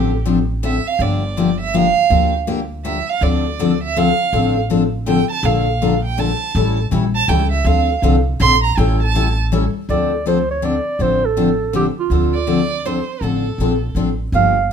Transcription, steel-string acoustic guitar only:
Already playing: D3 F3 C4 D4 A4
0.25 D3 F3 C4 D4 A4
0.63 D3 F3 C4 D4 A4
1.00 D3 F3 A#3 D4 G4
1.37 D3 F3 A#3 D4 G4
1.74 D3 F3 A#3 D4 G4
2.10 D3 F3 A#3 D4 G4
2.47 D3 F3 A#3 D4 G4
2.85 D3 F3 A#3 D4 G4
3.22 D3 F3 C4 D4 A4
3.59 D3 F3 C4 D4 A4
3.96 D3 F3 C4 D4 A4
4.33 D3 F3 C4 D4 A4
4.70 D3 F3 C4 D4 A4
5.06 D3 F3 C4 D4 A4
5.44 D3 F3 A#3 D4 A4
5.82 D3 F3 A#3 D4 A4
6.17 D3 F3 A#3 D4 A4
6.55 E3 G3 C#4 E4 A4
6.91 E3 G3 C#4 E4 A4
7.28 E3 G3 C#4 E4 A4
7.65 D3 F3 C4 D4 A4
8.03 D3 F3 C4 D4 A4
8.40 D3 F3 C4 D4 A4
8.78 E3 G3 C#4 E4 A4
9.15 E3 G3 C#4 E4 A4
9.52 E3 G3 C#4 E4 A4
9.89 D3 F3 C4 D4 A4
10.26 D3 F3 C4 D4 A4
10.62 D3 F3 C4 D4 A4
11.00 D3 F3 C4 D4 A4
11.37 D3 F3 C4 D4 A4
11.73 D3 F3 C4 D4 A4
12.11 D3 F3 C4 D4 A4
12.47 D3 F3 C4 D4 A4
12.85 D3 F3 C4 D4 A4
13.22 D3 F3 C4 D4 A4
13.60 D3 F3 C4 D4 A4
13.96 D3 F3 C4 D4 A4
14.33 D3 F3 A#3 D4 G4

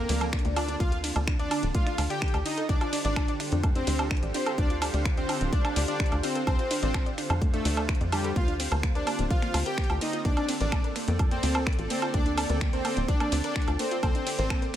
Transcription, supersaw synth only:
Already playing: A#3
0.56 D4
0.80 F4
1.39 D4
1.75 F4
2.10 G4
2.46 D#4
2.69 D4
3.05 D4
3.76 C4
4.34 C4
4.58 D4
5.17 C4
5.53 D4
5.88 D4
6.23 C4
6.47 C4
6.82 C4
7.53 A3
8.12 G3
8.36 F4
8.95 D4
9.31 F4
9.66 G4
10.01 D#4
10.25 D4
10.61 D4
11.32 C4
11.90 C4
12.14 D4
12.73 C4
13.09 D4
13.44 D4
13.80 C4
14.03 C4
14.39 C4

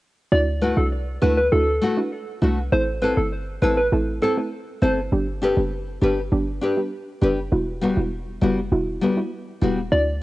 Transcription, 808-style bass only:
0.32 D2
0.77 C2
1.22 D2
1.52 D2
2.42 C2
2.72 A1
3.17 G1
3.62 A1
3.92 A1
4.82 G1
5.12 G1
5.57 F#1
6.02 G1
6.32 G1
7.22 F#1
7.52 E1
7.97 E1
8.42 F#1
8.72 E1
9.62 E1
9.92 D2

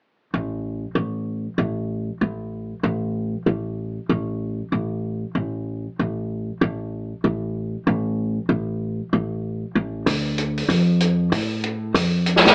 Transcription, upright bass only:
0.34 A1
0.95 A1
1.58 A1
2.21 A1
2.83 A1
3.46 A1
4.09 A1
4.72 A1
5.35 A1
5.99 A1
6.61 A1
7.24 A1
7.87 A1
8.49 A1
9.13 A1
9.75 A1
10.06 D2
10.68 F2
11.32 A2
11.94 F2
12.45 A2

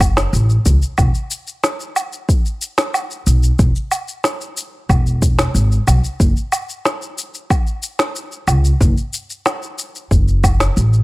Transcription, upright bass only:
Already playing: F#1
0.33 A1
0.66 C#2
0.98 E1
3.27 B1
3.59 E1
4.89 E1
5.54 G#1
5.88 B1
6.20 F#1
8.47 C#2
8.81 F#1
10.11 F#1
10.77 A1

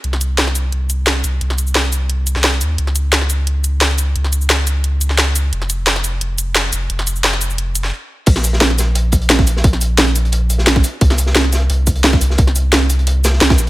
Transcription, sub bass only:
0.04 C2
0.73 C2
1.24 C2
1.41 C2
2.36 C2
2.61 D#2
2.78 C#2
4.16 C#2
5.53 F1
6.21 F1
6.73 F1
6.90 F1
8.27 A#1
9.64 A#1
11.01 C2
11.70 C2
12.21 C2
12.38 C2
13.41 C2
13.58 A#1

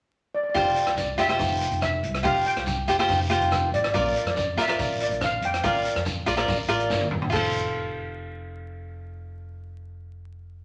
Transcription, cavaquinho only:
0.54 F4 G4 C5
1.18 F4 G4 C5
1.29 F4 G4 C5
2.23 F4 G4 C5
2.88 F4 G4 C5
2.99 F4 G4 C5
3.30 F4 G4 C5
3.94 F4 A#4 D5
4.57 F4 A#4 D5
4.68 F4 A#4 D5
5.63 F4 A#4 D5
6.26 F4 A#4 D5
6.37 F4 A#4 D5
6.69 F4 A#4 D5
7.30 F4 A4
7.36 C5

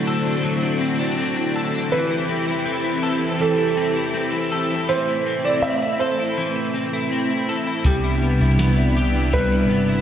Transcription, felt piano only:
Already playing: F#4
1.92 B4
3.41 A4
4.89 C5
5.45 D5
5.62 E5
5.99 C5
7.86 G4
9.33 B4

